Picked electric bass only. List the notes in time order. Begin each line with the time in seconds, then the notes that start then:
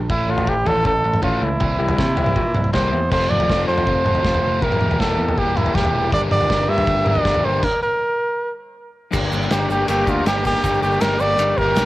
0.10 A1
0.28 A1
0.48 A1
0.65 A1
0.85 A1
1.04 A1
1.23 A1
1.42 C#2
1.61 C2
1.80 C2
1.98 C3
2.17 C2
2.36 A#2
2.55 C2
2.74 C2
2.93 E2
3.12 F1
3.30 F1
3.49 F1
3.68 F2
3.87 F1
4.24 F1
4.43 F1
4.62 E1
4.80 E1
5.00 E1
5.17 E2
5.38 E1
5.75 E1
5.93 E1
6.12 G1
6.32 G1
6.50 G1
6.68 G2
6.87 G1
7.25 G1
7.44 G1
9.14 G1
9.32 G1
9.51 G1
9.69 G1
9.89 G1
10.07 D2
10.25 G1
10.64 G1
10.82 G1
11.01 G1
11.19 G1
11.38 G1
11.58 G1
11.76 B1